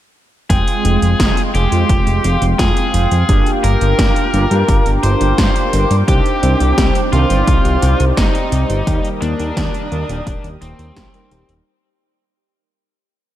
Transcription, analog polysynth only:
0.50 G#3 C4 F4 G5
1.55 G#3 C4 F4 G#4
1.72 G#3 C4 F4 G5
3.29 A#3 D4 F4 G4
4.34 A#3 D4 F4 A#4
4.51 A#3 D4 F4 G4
6.08 C4 D4 D#4 G4
7.13 C4 D4 D#4 A#4
7.30 C4 D#4 G4 D5
8.87 D#3 G3 A#3 G4
9.92 G3 A#3 D#4 A#4
10.09 D#3 G3 A#3 G4
11.14 G3 A#3 D#4 A#4

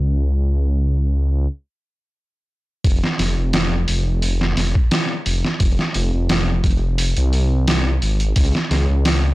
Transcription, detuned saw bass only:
Already playing: C#2
2.84 F1
3.19 F1
3.37 F1
3.88 F1
4.57 F1
5.26 F1
5.60 F1
5.95 F1
6.13 F1
6.64 F1
7.17 C2
8.02 G#1
8.36 C#2
8.71 C#2
8.89 C#2

